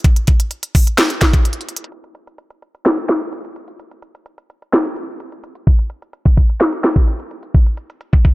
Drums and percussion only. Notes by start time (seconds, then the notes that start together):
0.04 kick, closed hi-hat
0.16 closed hi-hat
0.27 kick, closed hi-hat
0.40 closed hi-hat
0.51 closed hi-hat
0.63 closed hi-hat
0.75 kick, open hi-hat
0.87 closed hi-hat
0.98 finger snap, snare, closed hi-hat
1.10 closed hi-hat
1.21 finger snap, kick, snare, closed hi-hat
1.33 kick, closed hi-hat
1.45 closed hi-hat
1.53 closed hi-hat
1.61 closed hi-hat
1.69 closed hi-hat
1.76 closed hi-hat
1.84 closed hi-hat
1.92 closed hi-hat
2.04 closed hi-hat
2.15 closed hi-hat
2.27 closed hi-hat
2.38 closed hi-hat
2.50 closed hi-hat
2.62 closed hi-hat
2.75 closed hi-hat
2.85 finger snap, snare, closed hi-hat
2.98 closed hi-hat
3.09 finger snap, snare, closed hi-hat
3.33 closed hi-hat
3.45 closed hi-hat
3.56 closed hi-hat
3.68 closed hi-hat
3.80 closed hi-hat
3.91 closed hi-hat
4.02 closed hi-hat
4.15 closed hi-hat
4.26 closed hi-hat
4.38 closed hi-hat
4.50 closed hi-hat
4.62 closed hi-hat
4.73 finger snap, snare, closed hi-hat
4.85 closed hi-hat
4.96 closed hi-hat
5.20 closed hi-hat
5.32 closed hi-hat
5.44 closed hi-hat
5.55 closed hi-hat
5.67 kick, closed hi-hat
5.79 closed hi-hat
5.90 closed hi-hat
6.02 closed hi-hat
6.13 closed hi-hat
6.25 kick, closed hi-hat
6.37 kick, closed hi-hat
6.50 closed hi-hat
6.60 finger snap, snare, closed hi-hat
6.73 closed hi-hat
6.84 finger snap, snare, closed hi-hat
6.96 kick
7.08 closed hi-hat
7.20 closed hi-hat
7.31 closed hi-hat
7.43 closed hi-hat
7.54 kick, closed hi-hat
7.67 closed hi-hat
7.77 closed hi-hat
7.90 closed hi-hat
8.01 closed hi-hat
8.13 kick, closed hi-hat
8.25 kick, closed hi-hat